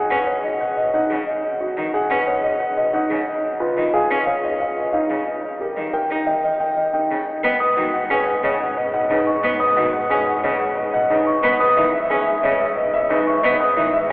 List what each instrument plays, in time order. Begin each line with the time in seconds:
Already playing: grand piano G#4 F#5
0.10 cello C#4, grand piano B4, celesta F#5
0.27 grand piano C#5 F#5
0.43 grand piano D#5
0.61 grand piano F#5
0.77 celesta D#5, grand piano D#5
0.94 grand piano D#4 F#5
1.10 cello C#3
1.27 grand piano D#5
1.60 grand piano F#4
1.77 cello D#3, grand piano D#5
1.94 grand piano G#4 F#5
2.10 cello C#4, grand piano B4, celesta F#5
2.27 grand piano C#5 F#5
2.44 grand piano D#5
2.60 grand piano F#5
2.77 celesta D#5, grand piano D#5
2.93 grand piano D#4 F#5
3.10 cello C#3
3.27 grand piano D#5
3.60 grand piano F4 B4
3.77 cello D#3, grand piano D#5
3.94 grand piano G#4 F5
4.10 cello C#4, grand piano B4, celesta F5
4.27 grand piano C#5 F5
4.44 grand piano D#5
4.60 grand piano F5
4.77 grand piano D#5, celesta D#5
4.93 grand piano D#4 F5
5.10 cello C#3
5.26 grand piano D#5
5.60 grand piano G4 A#4
5.77 cello D#3, grand piano D#5
5.93 grand piano A#4 G5
6.10 cello D#4, grand piano A#4, celesta G5
6.26 grand piano D#5 G5
6.43 grand piano D#5
6.60 grand piano G5
6.77 celesta D#5, grand piano D#5
6.93 grand piano D#4 G5
7.10 cello C#3
7.27 grand piano D#5
7.44 double bass section G#2, cello B3, grand piano B4 D#5
7.60 grand piano B4, celesta D#6
7.76 cello D#3, grand piano F#4 D#5
7.94 grand piano F#5
8.10 cello C#4, grand piano G#4 B4
8.27 celesta F#5, grand piano F#5
8.43 cello C#3, grand piano C#5 D#5
8.61 grand piano F#5
8.77 grand piano D#5
8.93 celesta D#5, grand piano F#5
9.10 cello C#3, grand piano D#4 B4
9.27 grand piano D#5, celesta C#6
9.43 cello B3, grand piano B4 D#5
9.60 grand piano B4, celesta D#6
9.77 cello D#3, grand piano F#4 D#5
9.93 grand piano F#5
10.10 cello C#4, grand piano G#4 B4
10.26 grand piano F#5, celesta F#5
10.43 cello C#3, grand piano C#5 D#5
10.60 grand piano F#5
10.77 grand piano D#5
10.94 celesta D#5, grand piano F#5
11.10 cello C#3, grand piano D#4 B4
11.26 grand piano D#5, celesta C#6
11.43 double bass section G#2, cello B3, grand piano B4 D#5
11.60 grand piano B4, celesta D#6
11.77 cello D#3, grand piano E4 D#5
11.93 grand piano E5
12.10 cello C#4, grand piano G#4 B4
12.27 celesta E5, grand piano E5
12.43 cello C#3, grand piano C#5 D#5
12.60 grand piano E5
12.77 grand piano D#5
12.93 celesta D#5, grand piano E5
13.10 cello C#3, grand piano D#4 B4
13.26 grand piano D#5, celesta C#6
13.43 cello B3, grand piano B4 D#5
13.60 grand piano B4, celesta D#6
13.77 cello D#3, grand piano E4 D#5
13.93 grand piano E5